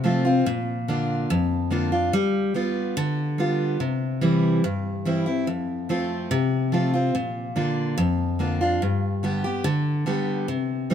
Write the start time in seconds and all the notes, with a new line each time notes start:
Already playing: C3
0.04 F3 A3 C4 F4
0.25 C4 F4
0.46 A#2
0.88 D3 A#3 D4 F4
1.30 F2
1.70 D3 A#3 D4 F4
1.92 D4 F4
2.13 G3
2.54 G3 B3 F4
2.97 D3
3.38 G3 B3 F4
3.80 C3
4.21 E3 G3 C4 E4
4.64 G2
5.05 E3 G3 C4 E4
5.26 C4 E4
5.47 F2
5.89 F3 A3 C4 F4
6.31 C3
6.72 F3 A3 C4 F4
6.94 C4 F4
7.15 A#2
7.56 D3 A#3 D4 F4
7.98 F2
8.39 D3 A#3 D4 F4
8.61 D4 F4
8.82 G2
9.23 D3 G3 B3 G4
9.44 B3 G4
9.64 D3
10.06 D3 G3 B3 G4
10.48 C3
10.90 E3 G3 C4